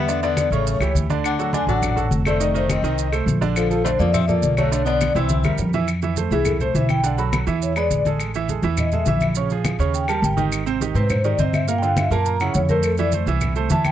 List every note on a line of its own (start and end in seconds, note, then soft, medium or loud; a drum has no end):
0.00 0.46 E2 medium
0.00 0.20 B3 medium
0.00 0.24 E5 medium
0.08 0.20 D3 medium
0.08 0.20 D4 medium
0.08 0.20 D5 medium
0.08 maracas medium
0.23 0.47 D3 medium
0.23 0.50 B3 medium
0.23 0.47 D4 medium
0.23 0.50 D5 medium
0.23 0.47 D5 medium
0.23 high conga soft
0.23 maracas soft
0.37 high conga medium
0.37 claves medium
0.37 maracas medium
0.51 0.78 A1 medium
0.51 0.76 C#3 medium
0.51 0.92 A3 medium
0.51 0.76 C#4 medium
0.51 0.93 C#5 medium
0.51 0.76 C#5 medium
0.51 high conga soft
0.51 maracas soft
0.66 high conga soft
0.66 maracas medium
0.80 0.94 C#2 medium
0.80 1.05 E3 medium
0.80 1.05 E4 medium
0.80 1.05 G4 medium
0.80 high conga soft
0.80 claves medium
0.80 maracas soft
0.94 1.62 D2 medium
0.94 high conga medium
0.94 maracas medium
1.10 1.34 D3 medium
1.10 1.34 D4 medium
1.10 1.34 D5 medium
1.10 high conga medium
1.10 maracas soft
1.24 1.52 D4 medium
1.24 1.55 F#5 medium
1.24 high conga soft
1.24 claves medium
1.24 maracas medium
1.38 1.51 F#3 medium
1.38 1.51 F#4 medium
1.38 1.51 A4 medium
1.38 high conga soft
1.38 maracas soft
1.53 1.65 D3 medium
1.53 1.66 D4 medium
1.53 1.67 D4 medium
1.53 1.66 D5 medium
1.53 1.67 G#5 loud
1.53 high conga medium
1.53 maracas medium
1.67 2.08 A1 medium
1.67 1.92 F#3 medium
1.67 2.08 D4 medium
1.67 1.92 F#4 medium
1.67 1.92 A4 medium
1.67 2.09 F#5 loud
1.67 high conga soft
1.67 maracas soft
1.82 high conga soft
1.82 low conga medium
1.82 claves medium
1.82 maracas medium
1.96 2.20 F#3 medium
1.96 2.20 F#4 medium
1.96 2.20 A4 medium
1.96 high conga soft
1.96 low conga medium
1.96 maracas soft
2.11 2.78 F1 medium
2.11 high conga medium
2.11 maracas medium
2.25 2.38 A3 medium
2.25 2.53 A3 medium
2.25 2.38 A4 medium
2.25 2.38 C5 medium
2.25 2.56 D5 medium
2.25 high conga medium
2.25 claves medium
2.25 maracas soft
2.40 2.52 D#3 medium
2.40 2.52 D#4 medium
2.40 2.52 D#5 medium
2.40 high conga soft
2.40 maracas medium
2.54 2.78 D#3 medium
2.54 2.69 A3 medium
2.54 2.78 D#4 medium
2.54 2.69 C5 medium
2.54 2.79 D#5 medium
2.54 high conga soft
2.54 maracas soft
2.69 3.10 C4 medium
2.69 3.11 D#5 medium
2.69 high conga loud
2.69 claves medium
2.69 maracas medium
2.82 3.24 C2 medium
2.82 3.07 D#3 medium
2.82 3.08 D#4 medium
2.82 3.08 D#5 medium
2.82 maracas soft
2.98 high conga soft
2.98 maracas medium
3.12 3.36 A3 medium
3.12 3.36 A4 medium
3.12 3.36 C5 medium
3.12 high conga soft
3.12 claves medium
3.12 maracas soft
3.26 3.94 A#1 medium
3.26 high conga medium
3.26 maracas medium
3.41 3.65 D3 medium
3.41 3.65 D4 medium
3.41 3.65 D5 medium
3.41 high conga medium
3.41 maracas soft
3.56 3.84 F3 medium
3.56 3.83 A4 medium
3.56 claves medium
3.56 maracas medium
3.71 3.83 F3 medium
3.71 3.83 F4 medium
3.71 3.83 A4 medium
3.71 high conga soft
3.71 maracas soft
3.84 3.97 D3 medium
3.84 3.91 A3 medium
3.84 3.97 D4 medium
3.84 3.91 C5 medium
3.84 3.97 D5 medium
3.84 high conga medium
3.84 maracas medium
3.99 4.40 F2 medium
3.99 4.23 F3 medium
3.99 4.13 A#3 medium
3.99 4.24 F4 medium
3.99 4.24 A4 medium
3.99 4.13 D5 medium
3.99 high conga soft
3.99 maracas soft
4.13 4.27 C4 loud
4.13 4.28 E5 loud
4.13 high conga soft
4.13 low conga medium
4.13 claves medium
4.13 maracas medium
4.27 4.52 F3 medium
4.27 4.55 A#3 medium
4.27 4.53 F4 medium
4.27 4.53 A4 medium
4.27 4.58 D5 medium
4.27 high conga soft
4.27 low conga medium
4.27 maracas soft
4.42 5.10 B1 medium
4.42 high conga medium
4.42 maracas medium
4.57 4.70 F#3 medium
4.57 4.84 A3 medium
4.57 4.70 F#4 medium
4.57 4.70 A4 medium
4.57 4.87 C#5 medium
4.57 high conga medium
4.57 claves medium
4.57 maracas soft
4.72 4.84 D3 medium
4.72 4.84 D4 medium
4.72 4.84 D5 medium
4.72 high conga soft
4.72 maracas medium
4.85 5.10 D3 medium
4.85 5.13 B3 medium
4.85 5.11 D4 medium
4.85 5.14 D5 loud
4.85 5.11 D5 medium
4.85 high conga soft
4.85 maracas soft
5.01 high conga medium
5.01 claves medium
5.01 maracas medium
5.15 5.42 C2 medium
5.15 5.39 E3 medium
5.15 5.56 C4 medium
5.15 5.39 E4 medium
5.15 5.56 E5 medium
5.15 5.40 E5 medium
5.15 high conga soft
5.15 maracas soft
5.29 high conga medium
5.29 maracas medium
5.43 5.57 E2 medium
5.43 5.68 G3 medium
5.43 5.68 G4 medium
5.43 5.69 A#4 medium
5.43 high conga medium
5.43 claves medium
5.43 maracas soft
5.58 6.26 F2 medium
5.58 low conga medium
5.58 maracas medium
5.73 5.86 E3 medium
5.73 5.86 E4 medium
5.73 5.86 E5 medium
5.73 low conga medium
5.73 maracas soft
5.88 high conga soft
5.88 claves medium
5.88 maracas medium
6.02 6.15 E3 medium
6.02 6.15 E4 medium
6.02 6.15 E5 medium
6.02 high conga soft
6.02 maracas soft
6.17 6.29 A3 medium
6.17 6.29 A4 medium
6.17 6.29 C5 medium
6.17 high conga medium
6.17 maracas medium
6.31 6.71 C2 medium
6.31 6.56 E3 medium
6.31 6.56 E4 medium
6.31 6.46 G#4 medium
6.31 6.56 E5 medium
6.31 high conga soft
6.31 maracas soft
6.45 6.60 A4 medium
6.45 high conga soft
6.45 low conga medium
6.45 claves medium
6.45 maracas medium
6.60 6.73 A3 medium
6.60 6.73 A4 medium
6.60 6.73 C5 medium
6.60 6.75 C5 medium
6.60 high conga soft
6.60 low conga medium
6.60 maracas soft
6.74 7.42 B1 medium
6.74 6.99 E3 medium
6.74 6.99 E4 medium
6.74 6.99 E5 medium
6.74 6.90 E5 medium
6.74 high conga medium
6.74 maracas medium
6.89 7.04 G5 medium
6.89 high conga medium
6.89 claves medium
6.89 maracas soft
7.03 7.16 D3 medium
7.03 7.16 D4 medium
7.03 7.16 D5 medium
7.03 7.18 F#5 medium
7.03 high conga soft
7.03 maracas medium
7.18 7.42 F#3 medium
7.18 7.42 F#4 medium
7.18 7.42 A4 medium
7.18 7.27 B5 medium
7.18 high conga soft
7.18 maracas soft
7.33 high conga loud
7.33 claves medium
7.33 maracas medium
7.47 7.87 E2 medium
7.47 7.71 E3 medium
7.47 7.71 E4 medium
7.47 7.71 E5 medium
7.47 high conga soft
7.47 maracas soft
7.62 7.76 C#5 medium
7.62 high conga soft
7.62 maracas medium
7.76 8.00 G#3 medium
7.76 8.00 G#4 medium
7.76 8.00 B4 medium
7.76 7.91 D5 medium
7.76 high conga soft
7.76 claves medium
7.76 maracas soft
7.91 8.58 A1 medium
7.91 high conga medium
7.91 maracas medium
8.05 8.29 G#3 medium
8.05 8.30 G#4 medium
8.05 8.30 A4 medium
8.05 high conga medium
8.05 maracas soft
8.20 high conga soft
8.20 claves medium
8.20 maracas medium
8.34 8.47 E3 medium
8.34 8.47 E4 medium
8.34 8.47 E5 medium
8.34 high conga soft
8.34 maracas soft
8.49 8.61 G#3 medium
8.49 8.61 G#4 medium
8.49 8.61 A4 medium
8.49 high conga medium
8.49 maracas medium
8.62 9.03 E2 medium
8.62 8.87 E3 medium
8.62 8.87 E4 medium
8.62 8.88 E5 medium
8.62 high conga soft
8.62 maracas soft
8.77 8.93 D#5 medium
8.77 high conga soft
8.77 low conga medium
8.77 claves medium
8.77 maracas medium
8.92 9.05 G#3 medium
8.92 9.05 G#4 medium
8.92 9.05 A4 medium
8.92 9.07 E5 medium
8.92 high conga soft
8.92 low conga medium
8.92 maracas soft
9.06 9.73 A#1 medium
9.06 9.31 E3 medium
9.06 9.31 E4 medium
9.06 9.31 E5 medium
9.06 9.22 E5 medium
9.06 high conga medium
9.06 maracas medium
9.20 high conga medium
9.20 claves medium
9.20 maracas soft
9.35 9.48 C#3 medium
9.35 9.48 C#4 medium
9.35 9.48 C#5 medium
9.35 high conga soft
9.35 maracas medium
9.50 9.75 F3 medium
9.50 9.75 F4 medium
9.50 9.75 G#4 medium
9.50 high conga soft
9.50 maracas soft
9.65 high conga medium
9.65 claves medium
9.65 maracas medium
9.79 10.19 D#2 medium
9.79 10.03 C#3 medium
9.79 10.03 C#4 medium
9.79 10.04 C#5 medium
9.79 high conga soft
9.79 maracas soft
9.94 10.08 G5 medium
9.94 high conga soft
9.94 maracas medium
10.08 10.32 G3 medium
10.08 10.32 G4 medium
10.08 10.32 A#4 medium
10.08 10.23 A5 loud
10.08 high conga soft
10.08 claves medium
10.08 maracas soft
10.22 10.89 G#1 medium
10.22 10.32 G5 medium
10.22 high conga medium
10.22 maracas medium
10.37 10.61 D#3 medium
10.37 10.61 D#4 medium
10.37 10.61 G4 medium
10.37 high conga medium
10.37 maracas soft
10.52 claves medium
10.52 maracas medium
10.66 10.78 C3 medium
10.66 10.78 C4 medium
10.66 10.78 C5 medium
10.66 high conga soft
10.66 maracas soft
10.81 10.93 D#3 medium
10.81 10.93 D#4 medium
10.81 10.93 G4 medium
10.81 high conga medium
10.81 maracas medium
10.94 11.35 G#2 medium
10.94 11.19 C3 medium
10.94 11.19 C4 medium
10.94 11.09 B4 medium
10.94 11.19 C5 medium
10.94 high conga soft
10.94 maracas soft
11.09 11.24 C5 medium
11.09 high conga soft
11.09 low conga medium
11.09 claves medium
11.09 maracas medium
11.24 11.36 D#3 medium
11.24 11.36 D#4 medium
11.24 11.37 G4 medium
11.24 11.38 D5 medium
11.24 high conga soft
11.24 maracas soft
11.38 12.05 G2 medium
11.38 11.63 C3 medium
11.38 11.63 C4 medium
11.38 11.63 C5 medium
11.38 11.53 D#5 medium
11.38 high conga medium
11.38 maracas medium
11.53 11.68 E5 medium
11.53 high conga medium
11.53 claves medium
11.53 maracas soft
11.68 11.80 A#2 medium
11.68 11.80 A#3 medium
11.68 11.80 A#4 medium
11.68 11.77 F5 medium
11.68 high conga soft
11.68 maracas medium
11.78 12.06 D3 medium
11.78 11.87 G5 loud
11.82 12.06 D4 medium
11.82 12.06 F4 medium
11.82 high conga soft
11.82 maracas soft
11.88 11.97 F5 medium
11.97 12.11 E5 medium
11.97 high conga loud
11.97 claves medium
11.97 maracas medium
12.10 12.51 F#2 medium
12.10 12.35 A#2 medium
12.10 12.35 A#3 medium
12.10 12.35 A#4 medium
12.10 12.25 A5 loud
12.10 high conga soft
12.10 maracas soft
12.26 12.40 A#5 medium
12.26 high conga soft
12.26 maracas medium
12.40 12.64 C#3 medium
12.40 12.64 C#4 medium
12.40 12.65 E4 medium
12.40 12.55 F#5 medium
12.40 high conga soft
12.40 claves medium
12.40 maracas soft
12.54 13.22 F2 medium
12.54 12.69 C#5 medium
12.54 high conga medium
12.54 maracas medium
12.69 12.93 A3 medium
12.69 12.94 A4 medium
12.69 12.83 A#4 medium
12.69 12.94 C5 medium
12.69 high conga medium
12.69 maracas soft
12.83 12.98 A4 medium
12.83 high conga soft
12.83 claves medium
12.83 maracas medium
12.97 13.11 E3 medium
12.97 13.11 E4 medium
12.97 13.07 D5 medium
12.97 13.11 E5 medium
12.97 high conga soft
12.97 maracas soft
13.12 13.25 A3 medium
13.12 13.25 A4 medium
13.12 13.25 C5 medium
13.12 high conga medium
13.12 maracas medium
13.26 13.67 C2 medium
13.26 13.51 E3 medium
13.26 13.51 E4 medium
13.26 13.51 E5 medium
13.26 high conga soft
13.26 maracas soft
13.41 high conga soft
13.41 low conga medium
13.41 claves medium
13.41 maracas medium
13.56 13.68 A3 medium
13.56 13.68 A4 medium
13.56 13.68 C5 medium
13.56 high conga soft
13.56 maracas soft
13.70 13.92 E2 medium
13.70 13.92 E3 medium
13.70 13.92 E4 medium
13.70 13.92 E5 medium
13.70 13.85 A5 loud
13.70 high conga medium
13.70 maracas medium
13.85 13.92 G5 medium
13.85 high conga medium
13.85 claves medium
13.85 maracas soft